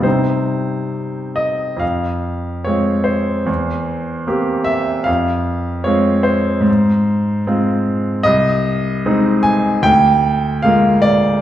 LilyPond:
<<
  \new Staff \with { instrumentName = "Grand piano" } { \time 2/4 \key c \minor \tempo 4 = 75 c''4. ees''8 | \key f \minor f''4 des''8 c''8~ | c''4 r8 e''8 | f''4 des''8 c''8~ |
c''4 r4 | \key aes \lydian ees''4. aes''8 | g''4 f''8 d''8 | }
  \new Staff \with { instrumentName = "Grand piano" } { \time 2/4 \key c \minor <c g c' ees'>2 | \key f \minor f,4 <aes c' f'>4 | e,4 <bes c' g'>4 | f,4 <aes c' f'>4 |
aes,4 <aes c' f'>4 | \key aes \lydian c,4 <aes c' ees'>4 | d,4 <aes bes f'>4 | }
>>